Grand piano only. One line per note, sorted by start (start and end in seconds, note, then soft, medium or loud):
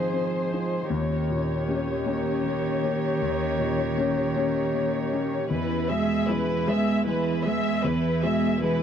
0.00 0.86 G#2 soft
0.00 0.92 D#3 soft
0.00 0.13 C4 soft
0.00 0.53 D#4 soft
0.00 0.53 F4 soft
0.13 0.51 C4 soft
0.53 0.87 C4 soft
0.53 0.87 D#4 soft
0.53 0.87 F4 soft
0.90 3.16 D#2 soft
1.30 1.91 A#2 soft
1.68 2.02 A#3 soft
1.68 2.03 C#4 soft
1.68 2.03 G4 soft
2.06 2.40 A#3 soft
2.06 2.41 C#4 soft
2.06 2.41 G4 soft
2.46 2.82 A#3 soft
2.84 3.18 A#3 soft
2.84 3.18 C#4 soft
2.84 3.18 G4 soft
3.22 5.48 D#2 soft
3.59 4.20 A#2 soft
3.97 4.32 A#3 soft
3.97 4.32 C#4 soft
3.97 4.32 G4 soft
4.36 4.70 A#3 soft
4.36 4.71 C#4 soft
4.36 4.71 G4 soft
4.74 5.11 A#3 soft
5.13 5.47 A#3 soft
5.13 5.48 C#4 soft
5.13 5.48 G4 soft
5.50 7.80 E2 soft
5.89 6.51 B2 soft
6.28 6.63 G#3 soft
6.28 6.64 B3 soft
6.28 6.64 G#4 soft
6.67 7.02 G#3 soft
6.67 7.03 B3 soft
6.67 7.03 G#4 soft
7.07 7.44 G#3 soft
7.46 7.81 G#3 soft
7.46 7.81 B3 soft
7.46 7.81 G#4 soft
7.84 8.83 E2 medium
8.24 8.83 B2 soft
8.62 8.83 G#3 soft
8.62 8.83 B3 soft
8.62 8.83 G#4 soft